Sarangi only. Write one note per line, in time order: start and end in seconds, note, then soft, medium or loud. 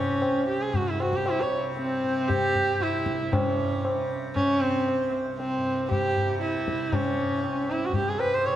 0.00 0.48 C#4 medium
0.49 0.63 G4 medium
0.62 0.77 G#4 medium
0.75 0.90 F#4 medium
0.89 1.02 E4 medium
1.01 1.17 F#4 medium
1.16 1.31 G4 medium
1.29 1.42 E4 medium
1.41 1.53 C#5 medium
1.77 2.30 C4 medium
2.28 2.83 G4 loud
2.82 3.35 E4 medium
3.33 4.11 C#4 medium
4.36 4.62 C#4 loud
4.61 5.13 C4 loud
5.38 5.86 C4 medium
5.92 6.39 G4 medium
6.42 6.96 E4 medium
6.94 7.72 C#4 medium
7.71 7.87 E4 medium
7.85 7.96 F#4 medium
7.97 8.11 G4 medium
8.09 8.21 G#4 medium
8.19 8.36 B4 medium
8.34 8.48 C5 loud
8.46 8.56 C#5 medium